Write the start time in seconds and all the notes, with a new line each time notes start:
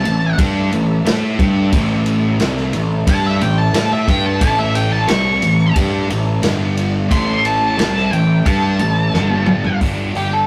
Already playing: A3 E4 A4 E5 A5
0.04 A1 A2 E3, ride
0.38 G2 G3 D4 G4, kick, ride
0.71 A1 A2 E3, ride
1.04 A2 A3 E4 A4, snare, ride
1.39 G2 G3 D4 G4, kick, ride
1.72 A1 A2 E3 A3 E4 A4, kick, ride
2.06 ride
2.40 C2 C3 G3 C4, snare, ride
2.57 snare
2.73 A1 A2 E3, ride
3.06 G2 G3 D4 G4 A5, kick, ride
3.27 E5
3.40 A1 A2 E3 G5, ride
3.58 A5
3.74 A2 A3 E4 A4 A5, snare, ride
3.93 E5
4.07 G2 G3 D4 G4 G5, kick, ride
4.26 A5
4.40 A1 A2 E3 A3 E4 A4 A5, kick, ride
4.59 E5
4.75 G5, ride
4.92 A5
5.07 C2 C3 G3 C4 C#6, snare, ride
5.42 A1 A2 E3, ride
5.75 G2 G3 D4 G4, kick, ride
6.08 A1 A2 E3, ride
6.41 G1 G2 D3 G3 D4 G4 D5, snare, ride
6.77 ride
7.09 A1 A2 E3 A3 E4 A4 E5 C6, kick, ride
7.45 A5, ride
7.78 C2 C3 G3 C4, snare, ride
7.97 snare
8.11 A1 A2 E3 G5, ride
8.45 G2 G3 D4 G4 A5, kick, ride
8.79 A1 A2 E3, ride
9.13 G1 G2 D3 G3 D4 G4 D5, snare
9.30 high tom
9.46 mid tom
9.64 floor tom
9.81 G1 G2 D3 G3 B3 D4, kick, open hi-hat
10.15 G1 G4, open hi-hat
10.33 A4